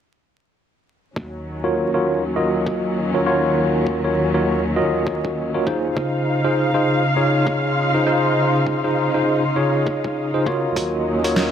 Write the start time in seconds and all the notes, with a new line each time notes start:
1.16 D#2 D#3 F#3 C#4, kick
1.35 D#5
1.41 F#3
1.64 F4 F#4 A#4 C#5
1.94 F4 F#4 A#4 C#5
2.36 F4 F#4 A#4 D#5
2.67 kick
3.14 F4 F#4 A#4 C#5
3.26 F4 F#4 A#4 C#5
3.87 kick
4.04 F4 F#4 A#4 C#5
4.34 F4 F#4 A#4 C#5
4.76 F4 F#4 A#4 D#5
5.07 kick
5.25 kick
5.54 F4 F#4 A#4 C#5
5.67 D#4 F4 G#4 C5, kick
5.96 C#3 D#4 F5, kick
6.26 F4
6.44 D#4 F4 G#4 C5
6.74 D#4 F4 G#4 C5
6.79 C6
7.16 D#4 F4 G#4 C#5
7.47 kick
7.94 D#4 F4 G#4 C5
8.06 D#4 F4 G#4 C5
8.67 kick
8.84 D#4 F4 G#4 C5
9.14 D#4 F4 G#4 C5
9.56 D#4 F4 G#4 C#5
9.87 kick
10.04 kick
10.34 D#4 F4 G#4 C5
10.46 F4 F#4 A#4 C#5, kick
10.76 D#2 D#3 F#3 C#4, kick, closed hi-hat
11.24 F4 F#4 A#4 C#5, closed hi-hat
11.33 F#3, snare, closed hi-hat